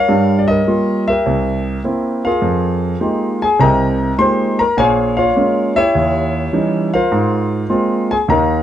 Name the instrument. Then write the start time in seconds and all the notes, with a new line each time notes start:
grand piano
Already playing: A#4 C#5 F5
0.08 G2 G3
0.39 D5
0.48 A#4 D#5
0.67 G3 A#3 F4
1.08 G4 A#4 E5
1.26 C2
1.84 A#3 C4 E4
2.25 F4 G#4 A#4 F5
2.42 F2
3.00 G#3 A#3 D#4 F4 G4
3.42 G#4 G#5
3.59 C2 C3 A#4 D#5 G5 A#5
4.18 G#3 A#3 D#4 F4 G4 C5 C6
4.59 A#4 A#5
4.77 A#1 A#2 G#4 C#5 F5 G#5
5.17 F4 C#5 F5
5.36 G#3 A#3 C#4
5.76 E4 G4 C#5 E5
5.95 D#2
6.53 E3 G3 C#4 D#4
6.94 F4 A#4 C5 F5
7.12 G#2
7.70 G#3 A#3 C4 F4
8.11 G#4 G#5
8.28 D#2 D#3 A#4 D#5 F5 A#5